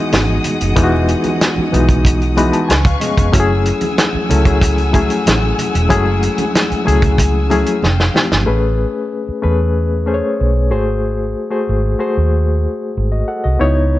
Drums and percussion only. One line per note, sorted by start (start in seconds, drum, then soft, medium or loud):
0.12 snare loud
0.12 closed hi-hat medium
0.12 muted conga soft
0.12 high conga medium
0.44 closed hi-hat medium
0.44 low conga medium
0.61 closed hi-hat medium
0.61 high conga soft
0.76 kick loud
0.76 closed hi-hat medium
0.76 muted conga soft
0.92 muted conga soft
1.08 closed hi-hat medium
1.24 closed hi-hat medium
1.24 high conga medium
1.41 snare loud
1.41 closed hi-hat medium
1.56 muted conga soft
1.56 high conga medium
1.73 closed hi-hat medium
1.73 low conga medium
1.89 kick medium
1.89 closed hi-hat soft
1.89 low conga medium
2.05 kick loud
2.05 closed hi-hat medium
2.05 muted conga soft
2.21 closed hi-hat soft
2.21 muted conga soft
2.37 closed hi-hat medium
2.37 high conga medium
2.53 closed hi-hat medium
2.69 snare loud
2.69 closed hi-hat medium
2.69 high conga medium
2.85 kick loud
2.85 closed hi-hat soft
2.85 muted conga soft
3.01 closed hi-hat medium
3.01 low conga medium
3.17 kick medium
3.17 closed hi-hat medium
3.17 high conga soft
3.34 kick loud
3.34 closed hi-hat loud
3.34 muted conga soft
3.49 muted conga soft
3.65 closed hi-hat medium
3.81 closed hi-hat soft
3.81 high conga medium
3.98 snare loud
3.98 closed hi-hat medium
3.98 muted conga soft
4.13 muted conga soft
4.13 high conga medium
4.29 closed hi-hat medium
4.29 low conga medium
4.45 kick medium
4.45 closed hi-hat soft
4.45 low conga medium
4.61 kick medium
4.61 closed hi-hat medium
4.78 closed hi-hat soft
4.78 muted conga soft
4.93 kick medium
4.93 closed hi-hat medium
4.93 high conga medium
5.10 closed hi-hat medium
5.26 snare loud
5.26 closed hi-hat loud
5.26 muted conga soft
5.26 high conga medium
5.42 muted conga soft
5.58 closed hi-hat medium
5.58 low conga medium
5.74 closed hi-hat medium
5.74 high conga medium
5.90 kick loud
5.90 closed hi-hat medium
5.90 muted conga soft
6.06 muted conga soft
6.23 closed hi-hat medium
6.38 closed hi-hat medium
6.38 high conga medium
6.55 snare loud
6.55 closed hi-hat medium
6.70 closed hi-hat soft
6.70 muted conga soft
6.70 high conga medium
6.87 closed hi-hat medium
6.87 low conga medium
7.02 kick medium
7.02 closed hi-hat soft
7.02 low conga medium
7.18 kick medium
7.18 closed hi-hat medium
7.18 muted conga soft
7.35 muted conga soft
7.50 closed hi-hat medium
7.50 high conga medium
7.66 closed hi-hat medium
7.83 snare medium
7.83 high conga medium
8.00 snare medium
8.15 snare medium
8.15 low conga medium
8.31 snare medium
8.31 high conga medium